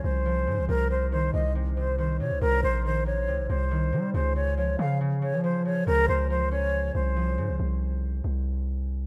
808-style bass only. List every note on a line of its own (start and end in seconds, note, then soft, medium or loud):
0.04 0.49 C2 loud
0.47 0.60 G#2 loud
0.58 0.68 C2 loud
0.69 1.31 C2 loud
1.34 2.21 C2 loud
2.20 2.32 C3 loud
2.31 2.41 C2 loud
2.42 2.62 C2 loud
2.63 3.29 A#1 loud
3.28 3.40 C#2 loud
3.39 3.49 A#1 loud
3.50 3.94 C2 loud
3.93 4.13 G3 loud
4.14 4.76 C#2 loud
4.79 5.34 C#3 loud
5.33 5.84 F3 loud
5.87 6.08 C#2 loud
6.08 6.91 C#2 loud
6.95 7.39 C2 loud
7.38 7.50 G#2 loud
7.49 7.59 C2 loud
7.60 8.22 C2 loud
8.24 9.07 C2 loud